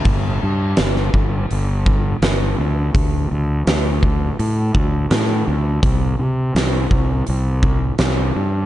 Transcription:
<<
  \new Staff \with { instrumentName = "Fingered electric bass" } { \clef bass \time 4/4 \key d \mixolydian \tempo 4 = 83 g,,8 g,8 g,,8 g,,8 g,,4 g,,8 d,8 | d,8 d,8 d,4 a,8 d,8 a,8 d,8 | c,8 c8 c,8 c,8 c,4 c,8 g,8 | }
  \new DrumStaff \with { instrumentName = "Drums" } \drummode { \time 4/4 <hho bd>4 <hho sn>16 sn16 bd8 hho8 bd8 <hho sn>4 | <hho bd>4 <hho sn>8 bd8 hho8 bd8 <hho sn>4 | <hho bd>4 <hho sn>8 bd8 hho8 bd8 <hho sn>4 | }
>>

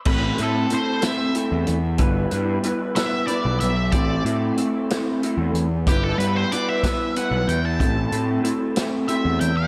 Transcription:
<<
  \new Staff \with { instrumentName = "Lead electric guitar" } { \time 6/8 \key a \minor \tempo 4. = 62 b'8 a'8 c''8 e''8 r4 | r4. e''8 d''8 e''8 | d''8 r2 r8 | g'16 a'16 b'16 c''16 d''16 e''8. fis''8 g''16 a''16~ |
a''8. r4 r16 e''8 g''16 fis''16 | }
  \new Staff \with { instrumentName = "Clean electric guitar" } { \time 6/8 \key a \minor <a c' e' a'>8 <a c' e' a'>8 <a c' e' a'>8 <a c' e' a'>8 <a c' e' a'>8 r8 | <g b e' b'>8 <g b e' b'>8 <g b e' b'>8 <g b e' b'>8 <g b e' b'>8 r8 | <a c' e' a'>8 <a c' e' a'>8 <a c' e' a'>8 <a c' e' a'>8 <a c' e' a'>8 r8 | <g b e' b'>8 <g b e' b'>8 <g b e' b'>8 <g b e' b'>8 <g b e' b'>8 r8 |
<a c' e' a'>8 <a c' e' a'>8 <a c' e' a'>8 <a c' e' a'>8 <a c' e' a'>8 r8 | }
  \new Staff \with { instrumentName = "Picked electric bass" } { \clef bass \time 6/8 \key a \minor a,,8 a,8 r4 r16 e,16 e,8 | g,,8 g,8 r4 r16 b,,16 b,,8 | a,,8 a,8 r4 r16 e,16 e,8 | g,,8 g,8 r4 r16 b,,16 e,8 |
a,,8 a,8 r4 r16 e,16 e,8 | }
  \new DrumStaff \with { instrumentName = "Drums" } \drummode { \time 6/8 <cymc bd>8 hh8 hh8 <hh sn>8 hh8 hh8 | <hh bd>8 hh8 hh8 <hh sn>8 hh8 hh8 | <hh bd>8 hh8 hh8 <hh sn>8 hh8 hh8 | <hh bd>8 hh8 hh8 <hh bd sn>8 hh8 hh8 |
<hh bd>8 hh8 hh8 <hh sn>8 hh8 hh8 | }
>>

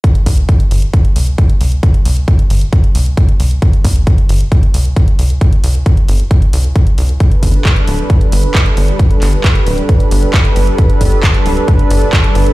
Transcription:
<<
  \new Staff \with { instrumentName = "Analog synth pad" } { \time 4/4 \key c \lydian \tempo 4 = 134 r1 | r1 | r1 | r1 |
<g d' a' b'>1~ | <g d' a' b'>1~ | <g d' a' b'>1 | }
  \new Staff \with { instrumentName = "Analog synth bass" } { \clef bass \time 4/4 \key c \lydian r8 c,8 r8 g,,8 r8 c,8 r8 c,8 | r8 c,8 r8 g,,8 r8 c,8 r8 c,8 | r8 c,8 r8 g,,8 r8 c,8 r8 c,8 | r8 c,8 r8 g,,8 r8 c,8 r8 c,8 |
r8 g,,8 r8 d,,8 r8 g,,8 r8 g,,8 | r8 g,,8 r8 d,,8 r8 g,,8 r8 g,,8 | r8 g,,8 r8 d,,8 r8 g,,8 r8 g,,8 | }
  \new DrumStaff \with { instrumentName = "Drums" } \drummode { \time 4/4 <hh bd>16 hh16 <hho bd>16 hh16 <hh bd>16 hh16 hho16 hh16 <hh bd>16 hh16 hho16 hh16 <hh bd>16 hh16 hho16 hh16 | <hh bd>16 hh16 hho16 hh16 <hh bd>16 hh16 hho16 hh16 <hh bd>16 hh16 hho16 hh16 <hh bd>16 hh16 hho16 hh16 | <hh bd>16 hh16 <hho bd>16 hh16 <hh bd>16 hh16 hho16 hh16 <hh bd>16 hh16 hho8 <hh bd>16 hh16 hho16 hh16 | <hh bd>16 hh16 hho16 hh16 <hh bd>16 hh16 hho16 hh16 <hh bd>16 hh16 hho16 hh16 <hh bd>16 hh16 hho16 hh16 |
<hh bd>16 hh16 <hho bd>16 hh16 <hc hh bd>16 hh16 hho16 hh16 <hh bd>16 hh16 hho16 hh16 <hc hh bd>16 hh16 hho16 hh16 | <hh bd>16 hh16 <hc hho>16 hh16 <hc hh bd>16 hh16 hho16 hh16 <hh bd>16 hh16 hho16 hh16 <hc hh bd>16 hh16 hho16 hh16 | <hh bd>16 hh16 <hho bd>16 hh16 <hc hh bd>16 hh16 hho16 hh16 <hh bd>16 hh16 hho16 hh16 <hc hh bd>16 hh16 hho16 hh16 | }
>>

